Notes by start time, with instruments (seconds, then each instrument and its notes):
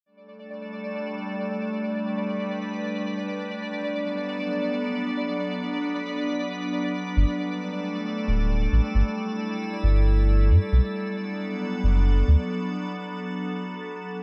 0.06 ambient pad G3 A3 D4 A4, synth texture D5
1.84 ambient pad B4
3.61 ambient pad F#3 B3 A4
5.39 ambient pad B4
7.17 sub bass G1, ambient pad G3 A3 A4
8.28 sub bass D1
8.72 sub bass A1
8.95 sub bass G1, ambient pad E4
9.83 sub bass G1
10.50 sub bass G2
10.72 sub bass B1, ambient pad F#3 B3 D4
11.84 sub bass F#1
12.28 sub bass D2